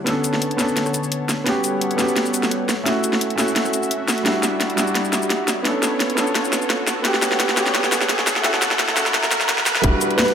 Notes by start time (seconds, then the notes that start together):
Already playing: D3 B3 C#5 A5, riser
0.04 B3 C#4 D4, snare, closed hi-hat
0.09 A4
0.24 closed hi-hat, shaker
0.34 snare
0.42 closed hi-hat
0.51 closed hi-hat
0.57 B3 C#4 D4, snare, closed hi-hat, shaker
0.62 A4
0.69 shaker
0.77 snare, closed hi-hat
0.86 cross-stick, shaker
0.94 closed hi-hat, shaker
1.04 shaker
1.12 closed hi-hat
1.29 cross-stick, snare, closed hi-hat, shaker
1.44 G3 B3 C#4 F#4 A4 C#5 F#5, snare, closed hi-hat
1.49 G4
1.64 closed hi-hat, shaker
1.81 closed hi-hat
1.91 closed hi-hat
1.96 B3 C#4 F#4, snare, closed hi-hat, shaker
2.01 G4
2.08 shaker
2.16 snare, closed hi-hat
2.26 shaker
2.34 closed hi-hat, shaker
2.43 snare, shaker
2.51 closed hi-hat
2.68 A3 F#4 E5, cross-stick, snare, closed hi-hat, shaker
2.84 A3 C#4 E4, snare, closed hi-hat
2.89 F#4
3.04 closed hi-hat, shaker
3.13 snare
3.21 closed hi-hat
3.30 closed hi-hat
3.36 A3 C#4 E4, snare, closed hi-hat, shaker
3.41 F#4
3.48 shaker
3.56 snare, closed hi-hat
3.65 cross-stick, shaker
3.73 closed hi-hat, shaker
3.83 shaker
3.91 closed hi-hat
4.08 cross-stick, snare, closed hi-hat, shaker
4.18 closed hi-hat
4.23 G3 D4 E4 D5, snare, closed hi-hat
4.28 F#4
4.43 snare, closed hi-hat, shaker
4.61 snare, closed hi-hat
4.70 closed hi-hat
4.76 G3 D4 E4, snare, closed hi-hat, shaker
4.81 F#4
4.87 shaker
4.95 snare, closed hi-hat
5.05 shaker
5.13 snare, closed hi-hat, shaker
5.22 shaker
5.30 snare, closed hi-hat
5.48 B3 A4 C#5, snare, closed hi-hat, shaker
5.63 B3 C#4 D4, snare, closed hi-hat
5.68 A4
5.83 snare, closed hi-hat, shaker
6.00 snare, closed hi-hat
6.10 closed hi-hat
6.15 B3 C#4 D4, snare, closed hi-hat, shaker
6.20 A4
6.27 shaker
6.35 snare, closed hi-hat
6.45 shaker
6.53 snare, closed hi-hat, shaker
6.62 shaker
6.70 snare, closed hi-hat
6.87 snare, closed hi-hat, shaker
7.02 G3 B3 C#4 F#4 C#5 F#5, snare, closed hi-hat
7.07 G4
7.14 snare
7.22 snare, closed hi-hat, shaker
7.32 snare
7.40 snare, closed hi-hat
7.49 snare, closed hi-hat
7.54 B3 C#4 F#4, snare, closed hi-hat, shaker
7.60 G4
7.66 snare, shaker
7.75 snare, closed hi-hat
7.84 snare, shaker
7.92 snare, closed hi-hat, shaker
8.01 snare, shaker
8.09 snare, closed hi-hat
8.19 snare
8.27 E4 F#5, snare, closed hi-hat, shaker
8.36 snare
8.42 A3 C#4 E4, snare, closed hi-hat
8.47 F#4
8.54 snare
8.62 snare, closed hi-hat, shaker
8.71 snare
8.79 snare, closed hi-hat
8.89 snare, closed hi-hat
8.94 A3 C#4 E4, snare, closed hi-hat, shaker
8.99 F#4
9.06 snare, shaker
9.14 snare, closed hi-hat
9.23 snare, shaker
9.31 snare, closed hi-hat, shaker
9.41 snare, shaker
9.49 snare, closed hi-hat
9.58 snare
9.66 snare, closed hi-hat, shaker
9.75 snare, closed hi-hat
9.81 E1 G3 D4 E4, kick, closed hi-hat
9.87 F#4
10.01 closed hi-hat, shaker
10.11 closed hi-hat
10.18 B4, snare, closed hi-hat
10.28 closed hi-hat